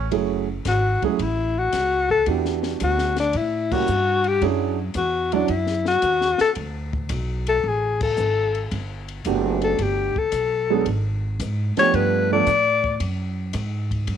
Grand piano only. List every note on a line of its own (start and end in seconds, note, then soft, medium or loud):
0.12 0.45 F#3 medium
0.12 0.45 A3 medium
0.12 0.45 C#4 medium
0.12 0.45 E4 medium
0.12 0.45 G#4 medium
1.03 1.18 F#3 medium
1.03 1.18 A3 medium
1.03 1.18 C#4 medium
1.03 1.18 E4 medium
1.03 1.19 G#4 medium
2.27 3.11 B3 medium
2.27 3.11 D4 medium
2.27 3.11 E4 medium
2.27 3.10 F#4 medium
2.27 3.11 G4 medium
3.72 3.87 G3 medium
3.72 3.87 A#3 medium
3.72 3.87 C#4 medium
3.72 3.87 E4 medium
3.72 3.88 G4 medium
4.42 4.75 F#3 medium
4.42 4.76 C#4 medium
4.42 4.76 D4 medium
4.42 4.76 E4 medium
4.42 4.76 G#4 medium
5.33 5.48 F#3 medium
5.33 5.48 C#4 medium
5.33 5.48 D4 medium
5.33 5.48 E4 medium
5.33 5.49 F#4 medium
9.26 10.09 A3 medium
9.26 10.09 B3 medium
9.26 10.09 D4 medium
9.26 10.09 F#4 medium
9.26 10.09 G4 medium
10.70 10.85 F#3 medium
10.70 10.85 G#3 medium
10.70 10.85 B3 medium
10.70 10.85 D4 medium
10.70 10.85 G#4 medium
11.77 12.27 F3 medium
11.77 12.27 A3 medium
11.77 12.27 B3 medium
11.77 12.27 D4 medium
11.77 12.28 G4 medium
12.31 12.46 F3 medium
12.31 12.46 A3 medium
12.31 12.46 B3 medium
12.31 12.46 D4 medium
12.31 12.47 A4 medium